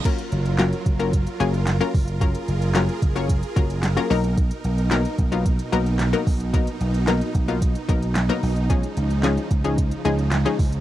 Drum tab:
CC |x---------------|----------------|----------------|----------------|
HH |xxxxxxxxxxxxxxox|xxxxxxxxxxxxxxox|xxxxxxxxxxxxxxox|xxxxxxxxxxxxxxox|
CP |----x-------x---|----x-------x---|----x-------x---|----x-------x---|
SD |----o-------o---|----o-------o---|----o-------o---|----o-------o---|
BD |o-----o-o-----o-|o-----o-o-o-----|o-----o-o-----o-|o-----o-o-o-----|

CC |----------------|
HH |xxxxxxxxxxxxxxox|
CP |----x-------x---|
SD |----o-------o---|
BD |o-----o-o-----o-|